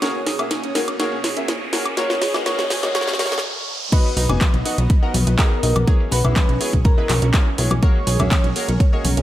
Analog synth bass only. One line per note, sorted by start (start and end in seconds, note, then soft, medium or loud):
4.17 4.27 B1 medium
4.29 4.39 F#1 medium
4.54 4.63 B1 medium
4.78 4.88 B1 medium
5.14 5.25 B1 loud
5.27 5.36 B1 medium
5.63 5.73 B1 medium
5.76 5.85 B1 medium
6.12 6.22 B1 medium
6.25 6.34 B1 medium
6.49 6.58 B1 medium
6.73 6.83 B1 medium
7.09 7.20 B1 medium
7.22 7.32 B1 medium
7.58 7.69 B1 loud
7.71 7.80 B1 medium
8.07 8.17 B1 loud
8.20 8.29 B1 medium
8.44 8.54 B1 medium
8.68 8.78 B1 medium
9.05 9.15 B1 medium
9.17 9.22 B1 medium